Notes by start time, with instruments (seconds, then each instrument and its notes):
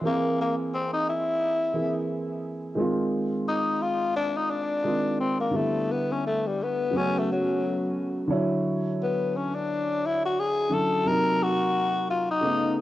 0.01 grand piano E3 A#3 C4
0.06 tenor saxophone A#3, grand piano G#4
0.41 tenor saxophone A#3
0.74 tenor saxophone C4
0.93 tenor saxophone D#4
1.09 tenor saxophone E4
1.73 grand piano E3 A#3 C4 G#4
2.75 grand piano D#3 G#3 C4
2.80 grand piano F4
3.48 tenor saxophone D#4
3.82 tenor saxophone F4
4.16 tenor saxophone D4
4.37 tenor saxophone D#4
4.50 tenor saxophone D4
4.84 grand piano D#3 G#3 C4 F4
5.20 tenor saxophone C4
5.40 tenor saxophone A#3
5.51 grand piano D3 G3 B3
5.56 tenor saxophone A3, grand piano E4
5.91 tenor saxophone B3
6.12 tenor saxophone C#4
6.27 tenor saxophone A3
6.46 tenor saxophone G3
6.63 tenor saxophone B3
6.91 grand piano C#3 F#3 A3 B3
6.95 tenor saxophone C#4, grand piano F#4
7.18 tenor saxophone A3
7.32 tenor saxophone F#3
8.27 grand piano D3 F#3 C#5
8.32 grand piano E4
9.03 tenor saxophone B3
9.36 tenor saxophone C#4
9.55 tenor saxophone D4
10.06 tenor saxophone E4
10.26 tenor saxophone F#4
10.40 tenor saxophone G#4
10.69 grand piano D3 F#3 C#4 E4, tenor saxophone A4
11.04 grand piano C3 F#3 A#3
11.08 grand piano D#4, tenor saxophone A#4
11.43 tenor saxophone F#4
12.10 tenor saxophone F4
12.31 tenor saxophone D#4
12.41 grand piano C#3 A3 B3
12.46 grand piano D#4